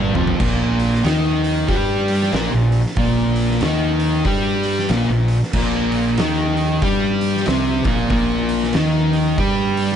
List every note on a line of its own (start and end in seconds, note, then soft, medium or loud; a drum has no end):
0.00 0.13 G1 medium
0.00 0.15 G2 medium
0.00 0.16 G3 medium
0.15 0.39 F1 medium
0.15 0.40 F2 medium
0.15 0.41 F3 loud
0.15 mid tom medium
0.27 floor tom loud
0.40 1.01 A#1 loud
0.40 1.05 A#2 medium
0.40 1.05 A#3 loud
0.40 kick loud
0.40 crash loud
0.80 open hi-hat medium
0.94 snare soft
1.04 1.65 D#2 medium
1.04 1.69 D#3 medium
1.04 1.69 D#4 loud
1.04 snare loud
1.04 open hi-hat medium
1.44 open hi-hat medium
1.68 2.29 G2 medium
1.68 2.33 G3 loud
1.68 2.34 G4 loud
1.68 kick loud
1.68 open hi-hat medium
2.08 open hi-hat medium
2.23 snare soft
2.32 2.51 A#1 medium
2.32 2.53 A#2 loud
2.32 2.53 A#3 loud
2.32 snare loud
2.32 open hi-hat medium
2.53 2.83 A#1 medium
2.53 2.81 A#2 medium
2.72 open hi-hat medium
2.86 snare soft
2.96 3.57 A#1 loud
2.96 3.62 A#2 loud
2.96 3.62 A#3 loud
2.96 kick loud
2.96 open hi-hat medium
3.36 open hi-hat medium
3.51 snare soft
3.60 4.21 D#2 medium
3.60 4.25 D#3 loud
3.60 4.25 D#4 loud
3.60 snare loud
3.60 open hi-hat medium
4.00 open hi-hat medium
4.25 4.86 G2 loud
4.25 4.89 G3 loud
4.25 4.90 G4 loud
4.25 kick medium
4.25 open hi-hat medium
4.64 open hi-hat medium
4.79 snare soft
4.89 5.08 A#1 loud
4.89 5.09 A#2 medium
4.89 5.10 A#3 medium
4.89 snare loud
4.89 open hi-hat loud
5.08 5.39 A#1 medium
5.08 5.38 A#2 medium
5.28 open hi-hat medium
5.43 snare soft
5.53 6.14 A#1 loud
5.53 6.18 A#2 loud
5.53 6.19 A#3 loud
5.53 kick loud
5.53 crash loud
5.92 open hi-hat medium
6.18 6.78 D#2 medium
6.18 6.82 D#3 loud
6.18 6.82 D#4 medium
6.18 snare loud
6.18 open hi-hat loud
6.57 open hi-hat medium
6.82 7.42 G2 loud
6.82 7.46 G3 loud
6.82 7.46 G4 loud
6.82 kick loud
6.82 open hi-hat medium
7.21 open hi-hat medium
7.36 snare soft
7.46 7.83 C2 loud
7.46 7.85 C3 loud
7.46 7.85 C4 loud
7.46 snare loud
7.46 open hi-hat medium
7.85 8.08 A#1 loud
7.85 8.10 A#2 medium
7.85 8.11 A#3 loud
7.85 kick loud
7.85 open hi-hat medium
8.10 8.70 A#1 loud
8.10 8.74 A#2 loud
8.10 8.74 A#3 loud
8.10 kick loud
8.10 open hi-hat medium
8.49 open hi-hat medium
8.63 snare soft
8.73 9.34 D#2 medium
8.73 9.38 D#3 loud
8.73 9.38 D#4 loud
8.73 snare loud
8.73 open hi-hat medium
9.13 open hi-hat medium
9.38 9.96 G2 loud
9.38 9.96 G3 medium
9.38 9.96 G4 loud
9.38 kick loud
9.38 open hi-hat medium
9.77 open hi-hat medium
9.92 snare soft